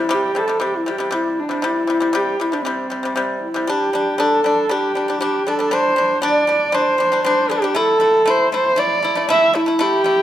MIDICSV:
0, 0, Header, 1, 3, 480
1, 0, Start_track
1, 0, Tempo, 510638
1, 1537, Time_signature, 4, 2, 24, 8
1, 9611, End_track
2, 0, Start_track
2, 0, Title_t, "Horsehead fiddle"
2, 0, Program_c, 0, 110
2, 0, Note_on_c, 0, 64, 93
2, 133, Note_on_c, 0, 67, 88
2, 147, Note_off_c, 0, 64, 0
2, 367, Note_on_c, 0, 69, 82
2, 381, Note_off_c, 0, 67, 0
2, 592, Note_off_c, 0, 69, 0
2, 596, Note_on_c, 0, 67, 76
2, 725, Note_on_c, 0, 64, 71
2, 739, Note_off_c, 0, 67, 0
2, 847, Note_on_c, 0, 67, 76
2, 861, Note_off_c, 0, 64, 0
2, 1075, Note_on_c, 0, 64, 76
2, 1089, Note_off_c, 0, 67, 0
2, 1314, Note_on_c, 0, 62, 72
2, 1329, Note_off_c, 0, 64, 0
2, 1552, Note_on_c, 0, 64, 88
2, 1566, Note_off_c, 0, 62, 0
2, 2028, Note_on_c, 0, 67, 82
2, 2042, Note_off_c, 0, 64, 0
2, 2262, Note_on_c, 0, 64, 73
2, 2277, Note_off_c, 0, 67, 0
2, 2380, Note_on_c, 0, 62, 71
2, 2394, Note_off_c, 0, 64, 0
2, 2492, Note_off_c, 0, 62, 0
2, 2497, Note_on_c, 0, 60, 63
2, 3180, Note_off_c, 0, 60, 0
2, 3224, Note_on_c, 0, 64, 70
2, 3466, Note_on_c, 0, 67, 90
2, 3480, Note_off_c, 0, 64, 0
2, 3943, Note_on_c, 0, 69, 91
2, 3957, Note_off_c, 0, 67, 0
2, 4430, Note_on_c, 0, 67, 88
2, 4444, Note_off_c, 0, 69, 0
2, 4897, Note_off_c, 0, 67, 0
2, 4902, Note_on_c, 0, 67, 80
2, 5145, Note_on_c, 0, 69, 82
2, 5159, Note_off_c, 0, 67, 0
2, 5391, Note_on_c, 0, 72, 98
2, 5405, Note_off_c, 0, 69, 0
2, 5857, Note_off_c, 0, 72, 0
2, 5863, Note_on_c, 0, 74, 99
2, 6337, Note_on_c, 0, 72, 95
2, 6351, Note_off_c, 0, 74, 0
2, 6814, Note_off_c, 0, 72, 0
2, 6820, Note_on_c, 0, 72, 90
2, 7060, Note_on_c, 0, 67, 90
2, 7074, Note_off_c, 0, 72, 0
2, 7297, Note_on_c, 0, 69, 107
2, 7311, Note_off_c, 0, 67, 0
2, 7800, Note_on_c, 0, 72, 102
2, 7814, Note_off_c, 0, 69, 0
2, 8029, Note_off_c, 0, 72, 0
2, 8033, Note_on_c, 0, 72, 103
2, 8266, Note_on_c, 0, 74, 105
2, 8280, Note_off_c, 0, 72, 0
2, 8742, Note_off_c, 0, 74, 0
2, 8746, Note_on_c, 0, 76, 105
2, 8986, Note_on_c, 0, 64, 90
2, 9000, Note_off_c, 0, 76, 0
2, 9223, Note_on_c, 0, 67, 110
2, 9237, Note_off_c, 0, 64, 0
2, 9611, Note_off_c, 0, 67, 0
2, 9611, End_track
3, 0, Start_track
3, 0, Title_t, "Pipa"
3, 0, Program_c, 1, 105
3, 85, Note_on_c, 1, 48, 90
3, 99, Note_on_c, 1, 55, 107
3, 282, Note_off_c, 1, 48, 0
3, 290, Note_off_c, 1, 55, 0
3, 328, Note_on_c, 1, 48, 64
3, 340, Note_on_c, 1, 55, 73
3, 428, Note_off_c, 1, 48, 0
3, 434, Note_off_c, 1, 55, 0
3, 448, Note_on_c, 1, 48, 57
3, 463, Note_on_c, 1, 55, 65
3, 548, Note_off_c, 1, 48, 0
3, 556, Note_off_c, 1, 55, 0
3, 561, Note_on_c, 1, 48, 81
3, 577, Note_on_c, 1, 55, 88
3, 761, Note_off_c, 1, 48, 0
3, 769, Note_off_c, 1, 55, 0
3, 811, Note_on_c, 1, 48, 61
3, 825, Note_on_c, 1, 55, 67
3, 910, Note_off_c, 1, 48, 0
3, 917, Note_off_c, 1, 55, 0
3, 925, Note_on_c, 1, 48, 59
3, 940, Note_on_c, 1, 55, 68
3, 1027, Note_off_c, 1, 48, 0
3, 1034, Note_off_c, 1, 55, 0
3, 1040, Note_on_c, 1, 48, 77
3, 1056, Note_on_c, 1, 55, 90
3, 1336, Note_off_c, 1, 48, 0
3, 1344, Note_off_c, 1, 55, 0
3, 1400, Note_on_c, 1, 48, 60
3, 1417, Note_on_c, 1, 55, 68
3, 1504, Note_off_c, 1, 48, 0
3, 1513, Note_off_c, 1, 55, 0
3, 1524, Note_on_c, 1, 48, 79
3, 1540, Note_on_c, 1, 55, 92
3, 1723, Note_off_c, 1, 48, 0
3, 1731, Note_off_c, 1, 55, 0
3, 1761, Note_on_c, 1, 48, 66
3, 1784, Note_on_c, 1, 55, 72
3, 1865, Note_off_c, 1, 48, 0
3, 1877, Note_off_c, 1, 55, 0
3, 1884, Note_on_c, 1, 48, 64
3, 1896, Note_on_c, 1, 55, 72
3, 1986, Note_off_c, 1, 48, 0
3, 1993, Note_off_c, 1, 55, 0
3, 2001, Note_on_c, 1, 48, 82
3, 2019, Note_on_c, 1, 55, 95
3, 2201, Note_off_c, 1, 48, 0
3, 2210, Note_off_c, 1, 55, 0
3, 2253, Note_on_c, 1, 48, 63
3, 2267, Note_on_c, 1, 55, 71
3, 2351, Note_off_c, 1, 48, 0
3, 2358, Note_off_c, 1, 55, 0
3, 2368, Note_on_c, 1, 48, 57
3, 2380, Note_on_c, 1, 55, 64
3, 2469, Note_off_c, 1, 48, 0
3, 2474, Note_off_c, 1, 55, 0
3, 2490, Note_on_c, 1, 48, 71
3, 2504, Note_on_c, 1, 55, 85
3, 2686, Note_off_c, 1, 48, 0
3, 2693, Note_off_c, 1, 55, 0
3, 2726, Note_on_c, 1, 48, 54
3, 2739, Note_on_c, 1, 55, 65
3, 2828, Note_off_c, 1, 48, 0
3, 2834, Note_off_c, 1, 55, 0
3, 2848, Note_on_c, 1, 48, 59
3, 2869, Note_on_c, 1, 55, 67
3, 2948, Note_off_c, 1, 48, 0
3, 2959, Note_off_c, 1, 55, 0
3, 2967, Note_on_c, 1, 48, 81
3, 2981, Note_on_c, 1, 55, 85
3, 3260, Note_off_c, 1, 48, 0
3, 3267, Note_off_c, 1, 55, 0
3, 3330, Note_on_c, 1, 48, 70
3, 3347, Note_on_c, 1, 55, 78
3, 3429, Note_off_c, 1, 48, 0
3, 3438, Note_off_c, 1, 55, 0
3, 3454, Note_on_c, 1, 55, 88
3, 3473, Note_on_c, 1, 62, 95
3, 3648, Note_off_c, 1, 55, 0
3, 3657, Note_off_c, 1, 62, 0
3, 3696, Note_on_c, 1, 55, 65
3, 3712, Note_on_c, 1, 62, 74
3, 3889, Note_off_c, 1, 55, 0
3, 3896, Note_off_c, 1, 62, 0
3, 3930, Note_on_c, 1, 55, 91
3, 3945, Note_on_c, 1, 62, 101
3, 4126, Note_off_c, 1, 55, 0
3, 4133, Note_off_c, 1, 62, 0
3, 4175, Note_on_c, 1, 55, 66
3, 4191, Note_on_c, 1, 62, 78
3, 4368, Note_off_c, 1, 55, 0
3, 4376, Note_off_c, 1, 62, 0
3, 4412, Note_on_c, 1, 55, 89
3, 4429, Note_on_c, 1, 62, 88
3, 4607, Note_off_c, 1, 55, 0
3, 4615, Note_off_c, 1, 62, 0
3, 4655, Note_on_c, 1, 55, 64
3, 4669, Note_on_c, 1, 62, 64
3, 4752, Note_off_c, 1, 55, 0
3, 4759, Note_off_c, 1, 62, 0
3, 4776, Note_on_c, 1, 55, 65
3, 4791, Note_on_c, 1, 62, 71
3, 4872, Note_off_c, 1, 55, 0
3, 4880, Note_off_c, 1, 62, 0
3, 4894, Note_on_c, 1, 55, 82
3, 4906, Note_on_c, 1, 62, 98
3, 5087, Note_off_c, 1, 55, 0
3, 5093, Note_off_c, 1, 62, 0
3, 5138, Note_on_c, 1, 55, 65
3, 5150, Note_on_c, 1, 62, 72
3, 5233, Note_off_c, 1, 55, 0
3, 5239, Note_off_c, 1, 62, 0
3, 5253, Note_on_c, 1, 55, 66
3, 5265, Note_on_c, 1, 62, 76
3, 5351, Note_off_c, 1, 55, 0
3, 5357, Note_off_c, 1, 62, 0
3, 5369, Note_on_c, 1, 55, 86
3, 5384, Note_on_c, 1, 62, 95
3, 5565, Note_off_c, 1, 55, 0
3, 5572, Note_off_c, 1, 62, 0
3, 5603, Note_on_c, 1, 55, 68
3, 5622, Note_on_c, 1, 62, 74
3, 5802, Note_off_c, 1, 55, 0
3, 5811, Note_off_c, 1, 62, 0
3, 5844, Note_on_c, 1, 55, 97
3, 5857, Note_on_c, 1, 62, 108
3, 6042, Note_off_c, 1, 55, 0
3, 6049, Note_off_c, 1, 62, 0
3, 6084, Note_on_c, 1, 55, 70
3, 6096, Note_on_c, 1, 62, 77
3, 6282, Note_off_c, 1, 55, 0
3, 6288, Note_off_c, 1, 62, 0
3, 6319, Note_on_c, 1, 55, 83
3, 6340, Note_on_c, 1, 62, 89
3, 6520, Note_off_c, 1, 55, 0
3, 6530, Note_off_c, 1, 62, 0
3, 6561, Note_on_c, 1, 55, 65
3, 6581, Note_on_c, 1, 62, 75
3, 6665, Note_off_c, 1, 55, 0
3, 6674, Note_off_c, 1, 62, 0
3, 6690, Note_on_c, 1, 55, 64
3, 6701, Note_on_c, 1, 62, 71
3, 6789, Note_off_c, 1, 55, 0
3, 6795, Note_off_c, 1, 62, 0
3, 6810, Note_on_c, 1, 55, 90
3, 6827, Note_on_c, 1, 62, 103
3, 7005, Note_off_c, 1, 55, 0
3, 7014, Note_off_c, 1, 62, 0
3, 7045, Note_on_c, 1, 55, 69
3, 7062, Note_on_c, 1, 62, 78
3, 7147, Note_off_c, 1, 55, 0
3, 7155, Note_off_c, 1, 62, 0
3, 7163, Note_on_c, 1, 55, 68
3, 7180, Note_on_c, 1, 62, 81
3, 7266, Note_off_c, 1, 55, 0
3, 7275, Note_off_c, 1, 62, 0
3, 7281, Note_on_c, 1, 57, 84
3, 7294, Note_on_c, 1, 64, 99
3, 7481, Note_off_c, 1, 57, 0
3, 7487, Note_off_c, 1, 64, 0
3, 7518, Note_on_c, 1, 57, 68
3, 7529, Note_on_c, 1, 64, 73
3, 7719, Note_off_c, 1, 57, 0
3, 7725, Note_off_c, 1, 64, 0
3, 7760, Note_on_c, 1, 57, 94
3, 7778, Note_on_c, 1, 64, 102
3, 7960, Note_off_c, 1, 57, 0
3, 7970, Note_off_c, 1, 64, 0
3, 8011, Note_on_c, 1, 57, 69
3, 8026, Note_on_c, 1, 64, 76
3, 8206, Note_off_c, 1, 57, 0
3, 8213, Note_off_c, 1, 64, 0
3, 8236, Note_on_c, 1, 57, 79
3, 8248, Note_on_c, 1, 64, 95
3, 8438, Note_off_c, 1, 57, 0
3, 8445, Note_off_c, 1, 64, 0
3, 8484, Note_on_c, 1, 57, 64
3, 8501, Note_on_c, 1, 64, 74
3, 8586, Note_off_c, 1, 57, 0
3, 8595, Note_off_c, 1, 64, 0
3, 8605, Note_on_c, 1, 57, 70
3, 8620, Note_on_c, 1, 64, 73
3, 8707, Note_off_c, 1, 57, 0
3, 8715, Note_off_c, 1, 64, 0
3, 8729, Note_on_c, 1, 57, 96
3, 8743, Note_on_c, 1, 64, 96
3, 8925, Note_off_c, 1, 57, 0
3, 8932, Note_off_c, 1, 64, 0
3, 8963, Note_on_c, 1, 57, 68
3, 8978, Note_on_c, 1, 64, 74
3, 9066, Note_off_c, 1, 57, 0
3, 9074, Note_off_c, 1, 64, 0
3, 9082, Note_on_c, 1, 57, 71
3, 9097, Note_on_c, 1, 64, 72
3, 9186, Note_off_c, 1, 57, 0
3, 9193, Note_off_c, 1, 64, 0
3, 9202, Note_on_c, 1, 57, 96
3, 9217, Note_on_c, 1, 64, 98
3, 9402, Note_off_c, 1, 57, 0
3, 9410, Note_off_c, 1, 64, 0
3, 9440, Note_on_c, 1, 57, 64
3, 9453, Note_on_c, 1, 64, 77
3, 9611, Note_off_c, 1, 57, 0
3, 9611, Note_off_c, 1, 64, 0
3, 9611, End_track
0, 0, End_of_file